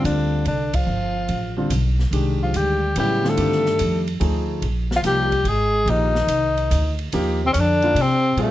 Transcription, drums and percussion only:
0.05 hi-hat pedal, ride
0.45 ride
0.73 kick, ride
1.29 ride
1.70 hi-hat pedal, ride
1.99 snare
2.13 ride
2.54 hi-hat pedal, ride
2.96 ride
3.25 snare
3.37 ride
3.52 snare
3.66 snare
3.79 hi-hat pedal, ride
4.07 ride
4.21 ride
4.62 ride
4.91 snare
5.04 snare, hi-hat pedal, ride
5.32 kick, ride
5.45 ride
5.87 ride
6.15 snare
6.28 hi-hat pedal, ride
6.57 ride
6.71 hi-hat pedal, ride
6.99 ride
7.12 ride
7.54 hi-hat pedal, ride
7.82 ride
7.96 ride
8.37 ride

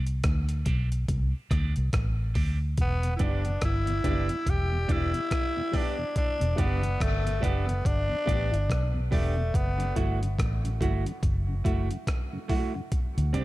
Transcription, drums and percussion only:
0.07 closed hi-hat
0.24 kick, cross-stick, closed hi-hat
0.49 closed hi-hat
0.66 kick, closed hi-hat
0.92 closed hi-hat
1.09 kick, closed hi-hat
1.51 kick, cross-stick, closed hi-hat
1.76 closed hi-hat
1.93 kick, cross-stick, closed hi-hat
2.35 kick, open hi-hat
2.77 kick, closed hi-hat
3.03 closed hi-hat
3.19 kick, closed hi-hat
3.45 closed hi-hat
3.61 kick, cross-stick, closed hi-hat
3.87 closed hi-hat
4.04 kick, closed hi-hat
4.29 closed hi-hat
4.46 kick, closed hi-hat
4.89 kick, closed hi-hat
5.14 closed hi-hat
5.31 kick, cross-stick, closed hi-hat
5.73 kick, open hi-hat
6.16 kick, closed hi-hat
6.41 closed hi-hat
6.58 kick, closed hi-hat
6.83 closed hi-hat
7.00 kick, cross-stick, closed hi-hat
7.27 closed hi-hat
7.43 kick, closed hi-hat
7.69 closed hi-hat
7.85 kick, closed hi-hat
8.28 kick, closed hi-hat
8.54 closed hi-hat
8.70 kick, cross-stick, closed hi-hat
9.12 kick, open hi-hat
9.54 kick, closed hi-hat
9.80 closed hi-hat
9.96 kick, closed hi-hat
10.23 closed hi-hat
10.39 kick, cross-stick, closed hi-hat
10.65 closed hi-hat
10.81 kick, closed hi-hat
11.06 closed hi-hat
11.23 kick, closed hi-hat
11.65 kick, closed hi-hat
11.91 closed hi-hat
12.07 kick, cross-stick, closed hi-hat
12.49 kick, open hi-hat
12.92 kick, closed hi-hat
13.18 closed hi-hat
13.34 kick, closed hi-hat

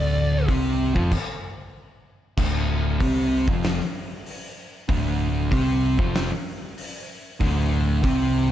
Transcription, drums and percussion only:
0.49 kick, open hi-hat
0.96 kick
1.12 kick, crash
2.37 kick, crash
3.01 kick, open hi-hat
3.48 kick
3.63 snare, open hi-hat
3.80 snare
4.26 open hi-hat
4.89 kick, open hi-hat
5.51 kick, open hi-hat
5.99 kick
6.14 snare, open hi-hat
6.78 open hi-hat
7.41 kick, open hi-hat
8.04 kick, open hi-hat

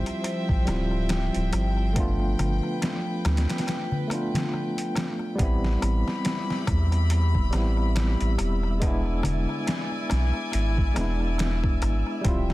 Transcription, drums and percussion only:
0.06 closed hi-hat, darbuka tek
0.24 closed hi-hat, darbuka tek
0.49 kick, darbuka tek
0.67 snare, closed hi-hat, darbuka tek
0.91 darbuka tek
1.09 snare, closed hi-hat, darbuka tek
1.34 closed hi-hat, darbuka tek
1.53 closed hi-hat, darbuka tek
1.77 darbuka tek
1.96 kick, closed hi-hat, darbuka tek
2.20 darbuka tek
2.39 closed hi-hat, darbuka tek, darbuka dum
2.63 darbuka tek
2.82 snare, closed hi-hat, darbuka tek
3.07 darbuka tek
3.25 snare, closed hi-hat, darbuka tek
3.37 snare, closed hi-hat
3.49 snare, closed hi-hat, darbuka tek
3.58 snare, closed hi-hat
3.67 snare, closed hi-hat, darbuka tek
3.91 darbuka tek, darbuka dum
4.10 closed hi-hat, darbuka tek
4.34 snare, closed hi-hat, darbuka tek, darbuka dum
4.54 darbuka tek
4.77 closed hi-hat, darbuka tek
4.96 snare, closed hi-hat, darbuka tek
5.19 darbuka tek
5.38 kick, closed hi-hat, darbuka tek
5.64 snare, darbuka tek
5.82 closed hi-hat, darbuka tek
6.08 snare, darbuka tek
6.25 snare, closed hi-hat, darbuka tek
6.49 snare, darbuka tek
6.67 kick, closed hi-hat, darbuka tek
6.92 closed hi-hat, darbuka tek
7.10 closed hi-hat, darbuka tek
7.35 kick, darbuka tek
7.53 snare, closed hi-hat, darbuka tek
7.77 darbuka tek
7.96 snare, closed hi-hat, darbuka tek
8.20 closed hi-hat, darbuka tek
8.38 closed hi-hat, darbuka tek
8.63 darbuka tek
8.82 kick, closed hi-hat, darbuka tek
9.05 darbuka tek
9.23 closed hi-hat, darbuka tek, darbuka dum
9.49 darbuka tek
9.67 snare, closed hi-hat, darbuka tek
9.91 darbuka tek
10.10 snare, closed hi-hat, darbuka tek
10.34 darbuka tek
10.52 closed hi-hat, darbuka tek
10.77 kick, darbuka tek
10.96 snare, closed hi-hat, darbuka tek
11.20 darbuka tek
11.38 snare, closed hi-hat, darbuka tek
11.63 kick, darbuka tek
11.82 closed hi-hat, darbuka tek
12.07 darbuka tek
12.24 kick, closed hi-hat, darbuka tek
12.50 snare, darbuka tek

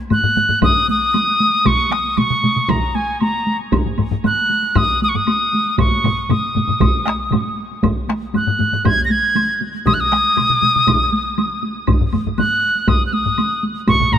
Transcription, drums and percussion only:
0.10 taiko low-mid, taiko high, high woodblock
0.24 taiko low-mid, taiko high
0.37 taiko low-mid, taiko high
0.49 taiko low-mid, taiko high
0.62 taiko, taiko low-mid, taiko high, high woodblock
0.76 taiko high
0.88 taiko high
1.02 taiko high
1.14 taiko high, high woodblock
1.27 taiko high
1.40 taiko high
1.53 taiko high
1.65 taiko, taiko mid, taiko high, high woodblock
1.91 taiko rim, taiko high, high woodblock
2.05 taiko high
2.17 taiko mid, taiko high, high woodblock
2.30 taiko mid, taiko high
2.44 taiko mid, taiko high
2.56 taiko mid, taiko high
2.69 taiko, taiko mid, taiko high, high woodblock
2.95 taiko high
3.08 taiko high
3.20 taiko high, high woodblock
3.47 taiko high
3.59 taiko high
3.72 taiko, taiko low-mid, taiko high, high woodblock
3.86 taiko low-mid
3.98 taiko low-mid, taiko high, high woodblock
4.11 taiko low-mid, taiko high
4.24 taiko low-mid, taiko high, high woodblock
4.37 taiko high
4.50 taiko high
4.62 taiko high
4.75 taiko, taiko low-mid, taiko high, high woodblock
4.89 taiko high
5.02 taiko high
5.15 taiko low-mid, taiko high
5.27 taiko high, high woodblock
5.40 taiko high
5.53 taiko high
5.66 taiko high
5.78 taiko, taiko low-mid, taiko mid, taiko high, high woodblock
5.91 taiko high
6.04 taiko low-mid, taiko mid, taiko high, high woodblock
6.18 taiko high
6.29 taiko low-mid, taiko mid, taiko high, high woodblock
6.43 taiko high
6.55 taiko low-mid, taiko mid, taiko high
6.68 taiko low-mid, taiko mid, taiko high
6.80 taiko, taiko low-mid, taiko mid, taiko high, high woodblock
6.95 taiko high
7.06 taiko rim, taiko high
7.08 taiko rim
7.20 taiko high
7.31 taiko low-mid, taiko mid, taiko high, high woodblock
7.46 taiko high
7.71 taiko high
7.83 taiko, taiko low-mid, taiko high, high woodblock
8.08 taiko rim, taiko high, high woodblock
8.21 taiko high
8.34 taiko low-mid, taiko high, high woodblock
8.46 taiko low-mid, taiko high
8.59 taiko low-mid, taiko high
8.72 taiko low-mid, taiko high
8.85 taiko, taiko low-mid, taiko high, high woodblock
8.98 taiko high
9.10 taiko high
9.23 taiko high
9.36 taiko high, high woodblock
9.49 taiko high
9.62 taiko high
9.74 taiko high
9.86 taiko, taiko mid, taiko high, high woodblock
10.12 taiko rim, taiko high, high woodblock
10.25 taiko high
10.37 taiko mid, taiko high, high woodblock
10.50 taiko mid
10.62 taiko mid, taiko high
10.75 taiko mid, taiko high
10.87 taiko, taiko mid, taiko high, high woodblock
11.00 taiko high
11.13 taiko high
11.26 taiko high
11.38 taiko high, high woodblock
11.51 taiko high
11.63 taiko high
11.75 taiko high
11.87 taiko, taiko low-mid, taiko high, high woodblock
12.01 taiko low-mid
12.13 taiko low-mid, taiko high, high woodblock
12.25 taiko low-mid, taiko high
12.38 taiko low-mid, taiko high, high woodblock
12.50 taiko high
12.75 taiko high
12.88 taiko, taiko low-mid, taiko high, high woodblock
13.13 taiko high
13.26 taiko low-mid
13.38 taiko high, high woodblock
13.51 taiko high
13.63 taiko high
13.76 taiko high
13.87 taiko, taiko low-mid, taiko mid, taiko high, high woodblock
14.00 taiko low-mid, taiko mid, taiko high
14.12 taiko low-mid, taiko mid, taiko high, high woodblock

